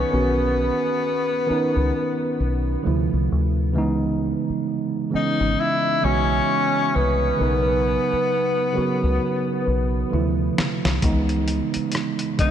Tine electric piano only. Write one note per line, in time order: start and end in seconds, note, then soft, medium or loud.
0.00 0.13 E3 medium
0.00 0.12 B3 medium
0.00 0.13 C#4 medium
0.00 0.13 D#4 medium
0.00 0.14 G#4 medium
0.10 1.30 D#3 medium
0.10 1.31 B3 medium
0.10 1.32 C#4 medium
0.10 1.30 A#4 medium
0.14 1.32 F#4 medium
1.46 2.84 D#3 medium
1.46 2.85 B3 medium
1.46 2.85 C#4 medium
1.46 2.84 A#4 medium
1.51 2.86 D#4 medium
2.83 3.65 C3 medium
2.83 3.63 D3 medium
2.83 3.63 F3 medium
2.83 3.64 A3 medium
2.87 3.65 E4 medium
3.73 4.93 C#3 medium
3.73 4.94 E3 medium
3.73 4.94 G#3 medium
3.73 4.95 B3 medium
3.78 4.96 D#4 loud
5.10 5.90 C#3 medium
5.10 5.91 E3 medium
5.10 5.91 G#3 medium
5.10 5.92 B3 medium
5.14 5.92 C#4 medium
6.01 7.21 C#3 medium
6.01 7.21 E3 medium
6.01 7.22 G#3 medium
6.01 7.22 B3 medium
6.05 7.23 F#4 medium
7.37 8.57 C#3 medium
7.37 8.58 F#3 medium
7.37 8.59 B3 medium
7.37 8.58 A#4 medium
7.41 8.59 D#4 medium
8.73 10.10 C#3 medium
8.73 10.11 F#3 medium
8.73 10.12 B3 medium
8.73 10.12 A#4 medium
8.77 10.13 F#4 medium
10.10 10.92 C3 medium
10.10 10.90 D3 medium
10.10 10.19 E3 medium
10.10 10.91 A3 medium
10.14 10.94 F3 medium
10.14 10.92 E4 medium
11.00 12.21 C#3 medium
11.00 11.10 D#3 medium
11.00 12.22 G#3 medium
11.00 12.22 B3 medium
11.05 12.25 E3 medium
11.05 12.23 D#4 loud
12.37 12.51 C#3 medium
12.37 12.51 E3 medium
12.37 12.51 G#3 medium
12.37 12.51 B3 medium
12.42 12.48 D4 medium